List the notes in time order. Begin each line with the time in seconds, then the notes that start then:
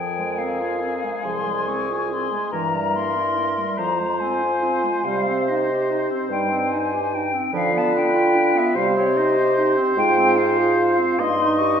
Already playing: F2 F3 G#4 A#4 G5
0.19 G#3
0.38 C4 F5
0.59 F4
0.81 C4
1.04 G#3
1.24 C2 F3 G#4 C6
1.47 G#3
1.68 C4 C#6
1.90 F4
2.11 C4 C6
2.31 G#3
2.52 G2 E3 E4 A#4 A#5
2.74 G3
2.96 A#3 C6
3.16 E4
3.37 A#3
3.58 G3
3.78 F2 F3 F4 C5 A#5
4.00 G#3
4.20 C4 G#5
4.42 F4
4.63 C4
4.83 G#3
5.04 C3 G3 G4 F5
5.27 C4
5.48 D#4 D#5
5.71 G4
5.91 D#4
6.10 C4
6.30 G2 G3 D#4 G5
6.51 C4
6.72 D#4 G#5
6.93 G4
7.14 D#4 G5
7.33 C4
7.53 D3 F3 F4 B4 F5
7.74 B3 A5
7.93 D4 G5
8.14 F4
8.35 D4
8.55 B3 E5
8.75 C3 G3 G4 C5 F5
8.96 C4 C#5
9.16 D#4 D#5
9.37 G4
9.57 D#4
9.77 C4
9.96 G#2 G#3 F4 G5
10.18 C4
10.37 F4 F5
10.58 G#4
10.78 F4
10.98 C4
11.18 G2 A#3 D#4 D#5 C6
11.40 D#4
11.58 G4 C#6